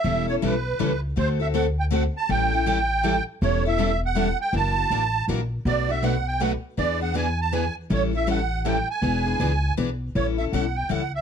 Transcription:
X:1
M:3/4
L:1/16
Q:"Swing" 1/4=160
K:Amix
V:1 name="Accordion"
e2 c2 B6 z2 | =c2 e2 f2 g2 f2 a2 | g8- g2 z2 | c2 e4 f4 g2 |
a8 z4 | d2 e2 f2 g2 f2 z2 | d2 f2 ^g2 a2 g2 z2 | c2 e2 f4 g2 ^g2- |
^g8 z4 | c2 e2 f2 g2 f2 e2 |]
V:2 name="Steel-string acoustic guitar"
[E,G,CEA]2 [CEA]2 [E,G,CEA] z3 [E,G,CEA] z3 | [D,A,=CFA]2 [CFA]2 [D,A,CFA] z3 [D,A,CFA] z3 | [E,G,CEA]2 [CEA]2 [E,G,CEA] z3 [E,G,CEA] z3 | [E,G,CEA]2 [CEA]2 [E,G,CEA] z3 [E,G,CEA] z3 |
[E,^A,DF]2 [A,DF]2 [E,A,DF] z3 [E,A,DF] z3 | [B,,F,A,DF]2 [A,DF]2 [B,,F,A,DF] z3 [B,,F,A,DF] z3 | [E,B,D^G]2 [B,DG]2 [E,B,DG] z3 [E,B,DG] z3 | [E,G,CEA]2 [CEA]2 [E,G,CEA] z3 [E,G,CEA] z3 |
[E,B,D^G]2 [B,DG]2 [E,B,DG] z3 [E,B,DG] z3 | [E,G,CEA]2 [CEA]2 [E,G,CEA] z3 [E,G,CEA] z3 |]
V:3 name="Steel-string acoustic guitar"
[E,G,CEA]2 z2 [E,G,CEA] z3 [E,G,CEA] z3 | [D,A,=CFA]2 z2 [D,A,CFA] z3 [D,A,CFA] z3 | [E,G,CEA]2 z2 [E,G,CEA] z3 [E,G,CEA] z3 | [E,G,CEA]2 z2 [E,G,CEA] z3 [E,G,CEA] z3 |
[F,DE^A]2 z2 [F,DEA] z3 [F,DEA] z3 | [B,,F,A,DFB]2 z2 [B,,F,A,DFB] z3 [B,,F,A,DFB] z3 | [E,B,D^GB]2 z2 [E,B,DGB] z3 [E,B,DGB] z3 | [E,G,CEA]2 z2 [E,G,CEA] z3 [E,G,CEA] z3 |
[E,B,D^GB]2 z2 [E,B,DGB] z3 [E,B,DGB] z3 | z12 |]
V:4 name="Upright bass" clef=bass
E,,,4 B,,,4 C,,4 | D,,12 | A,,,12 | E,,,12 |
F,,,4 A,,,4 ^A,,,4 | B,,,12 | E,,12 | A,,,12 |
E,,,4 C,,4 B,,,4 | A,,,4 B,,,4 C,,4 |]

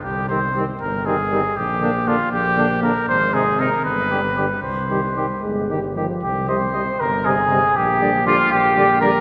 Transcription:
X:1
M:6/8
L:1/8
Q:3/8=78
K:Cm
V:1 name="Trumpet"
G c z B A2 | G2 F G2 B | c A B =B3 | c3 z3 |
z e e z e e | z d d z d d |]
V:2 name="Trumpet"
z C C z C C | z D D z D D | z E E z G G | z G G z G G |
G c2 B A2 | G2 F G2 B |]
V:3 name="French horn" clef=bass
z G, G, z G, G, | z B, B, z B, B, | z C C z G, G, | z G, G, A, G, F, |
z G, G, z G, G, | z G, G, z G, G, |]
V:4 name="Trombone" clef=bass
z E, E, z E, E, | z D, D, z D, D, | z C, C, z D, D, | z E, E, z E, E, |
z C, C, z C, C, | z D, D, z D, D, |]
V:5 name="Tuba" clef=bass
C,,3 G,,,3 | B,,,3 B,,,3 | A,,,3 G,,,3 | C,,3 G,,,3 |
C,,3 G,,,3 | B,,,3 B,,,3 |]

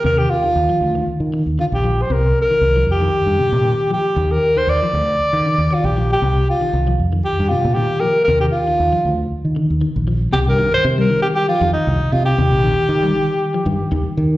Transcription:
X:1
M:4/4
L:1/16
Q:1/4=117
K:Cm
V:1 name="Alto saxophone"
B G F6 z4 F G2 c | B2 B4 G8 G2- | G B2 c d8 F G2 G- | G2 F4 z2 G2 F2 G2 B2 |
B G F6 z8 | G B2 c2 B2 G G F2 E3 F G- | G12- G2 z2 |]
V:2 name="Clean electric guitar" clef=bass
C,2 z E,2 F,2 E,2 z3 D,2 F,2 | C,2 z E,2 F,2 E,2 z C,2 E,2 F,2 | z3 E,2 F,2 z3 D,2 E,2 F,2 | C,2 z E,2 F,2 E,2 z C,2 E,2 F,2 |
C,2 z E,2 F,2 z3 D,2 E,2 F,2 | C,2 E,2 z G, E,2 z F, E,2 z4 | C,2 E,2 z G, E,2 z F, E,2 E,2 z2 |]
V:3 name="Fingered electric bass" clef=bass
E,,2 z2 E,, z D,,2 z E,2 E,, z B,,,3 | C,,2 z2 C,,2 F,,2 z G,, z B,,2 z3 | E,,2 z2 E,, z D,,2 z E,2 E,, z B,,,3 | C,,2 z2 C,,2 F,,2 z G,, z B,,2 z3 |
E,,2 z2 E,, z D,,2 z E,2 E,, z B,,,3 | C,, G,,2 z C,2 z4 F,, z C,, z C,2 | E,, B,,,2 z E,2 z4 G,, z E,, z E,2 |]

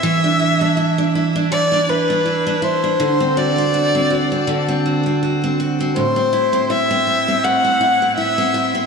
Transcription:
X:1
M:4/4
L:1/16
Q:"Swing 16ths" 1/4=81
K:Ador
V:1 name="Violin"
e6 z2 d2 B4 c2- | c2 d6 z8 | c4 e4 f4 e4 |]
V:2 name="Steel-string acoustic guitar"
E, D E D E D E D E, D E D E D E D | D, C F C F C F C D, C F C F C F C | A,, C E C E C E C A,, C E C E C E C |]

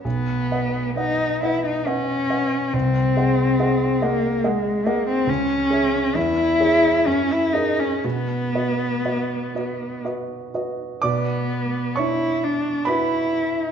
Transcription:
X:1
M:3/4
L:1/16
Q:1/4=67
K:B
V:1 name="Grand piano"
B,,,2 [Bdf]2 [Bdf]2 [Bdf]2 [Bdf]2 [Bdf]2 | ^B,,,2 [Gdf]2 [Gdf]2 [Gdf]2 [Gdf]2 [Gdf]2 | C,,2 [Gce]2 E,,2 [Gce]2 F,,2 [GAd]2 | B,,2 [FBd]2 [FBd]2 [FBd]2 [FBd]2 [FBd]2 |
[K:Bm] [B,,dd']4 [Dcc']4 [FBb]4 |]
V:2 name="Cello"
B,4 D2 E D C4 | ^B,6 A,2 G,2 A, B, | C4 E4 C E D C | B,8 z4 |
[K:Bm] B,4 E2 D2 E4 |]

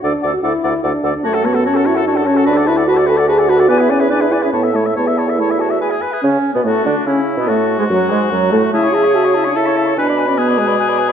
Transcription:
X:1
M:3/4
L:1/16
Q:1/4=145
K:Dlyd
V:1 name="Flute"
f2 f2 f2 f2 f2 f2 | [K:A] a f a f a f a f a f a f | a f a f a f a f a f a f | g e g e g e g e a e a e |
a e a e a e a e g e g e | C3 B A2 D2 C3 B | A3 G F2 G2 F2 A2 | a c' a c' a c' a c' a c' a c' |
g b g b g b g b g b g b |]
V:2 name="Oboe"
d2 d2 d2 d2 d2 d2 | [K:A] c A c A c A c A c A c A | B d B d B d B d B d B d | d B d B d B d B c e c e |
c e c e c e c e B G B G | z4 F4 E4 | F12 | G8 A4 |
B4 G8 |]
V:3 name="Clarinet"
A2 A2 A2 A2 A2 A2 | [K:A] F A F A F A F A F A F A | F A F A F A F A F A F A | B G B G B G B G E A E A |
E A E A E2 F2 G2 B2 | C3 B, A,2 D2 C3 B, | A,3 G, F,2 G,2 F,2 A,2 | e c e c e c e c e c e c |
B d B d B d B d B d B z |]
V:4 name="French horn"
D3 F E4 D3 D | [K:A] A,2 B,2 C2 E2 D2 C2 | D2 E2 F2 A2 G2 F2 | B,2 C2 D2 E C B,2 A,2 |
B,4 A,4 z4 | C3 B, A,2 D2 C3 B, | A,3 G, F,2 G,2 F,2 A,2 | E2 G2 F2 E D E4 |
D3 C B,2 G,2 z4 |]
V:5 name="Bassoon" clef=bass
D,,2 D,,2 D,,2 D,,2 D,,2 D,,2 | [K:A] F,,12 | D,,12 | E,,8 A,,4 |
E,,8- E,,2 z2 | C,3 B,, A,,2 D,2 C,3 B,, | A,,3 G,, F,,2 G,,2 F,,2 A,,2 | C,12 |
B,,12 |]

